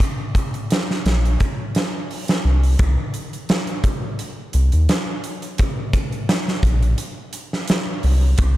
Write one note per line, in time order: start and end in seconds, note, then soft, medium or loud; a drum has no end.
0.00 kick loud
0.00 closed hi-hat medium
0.35 kick medium
0.35 closed hi-hat medium
0.54 closed hi-hat soft
0.70 snare loud
0.70 closed hi-hat medium
0.91 snare soft
1.05 1.37 A#1 medium
1.05 snare loud
1.05 closed hi-hat medium
1.25 closed hi-hat soft
1.40 kick medium
1.40 closed hi-hat medium
1.75 snare medium
1.75 closed hi-hat medium
2.11 open hi-hat medium
2.28 snare loud
2.28 closed hi-hat medium
2.45 2.76 C2 loud
2.63 open hi-hat medium
2.79 2.96 C2 loud
2.79 kick loud
2.79 closed hi-hat medium
3.14 closed hi-hat medium
3.33 closed hi-hat soft
3.49 snare loud
3.49 closed hi-hat medium
3.67 closed hi-hat soft
3.84 kick medium
3.84 closed hi-hat medium
4.19 closed hi-hat medium
4.53 4.71 C2 loud
4.53 closed hi-hat medium
4.72 4.87 D#2 loud
4.72 closed hi-hat soft
4.89 snare loud
4.89 closed hi-hat medium
5.24 closed hi-hat medium
5.42 closed hi-hat soft
5.58 kick loud
5.58 closed hi-hat medium
5.93 kick medium
5.93 closed hi-hat medium
6.12 closed hi-hat soft
6.29 snare loud
6.29 closed hi-hat medium
6.48 snare medium
6.63 6.94 A#1 medium
6.63 kick medium
6.63 closed hi-hat medium
6.83 closed hi-hat soft
6.98 closed hi-hat medium
7.33 closed hi-hat medium
7.53 snare soft
7.68 snare loud
7.68 closed hi-hat medium
8.03 8.35 C2 loud
8.03 open hi-hat medium
8.38 8.55 C2 loud
8.38 kick loud
8.38 closed hi-hat loud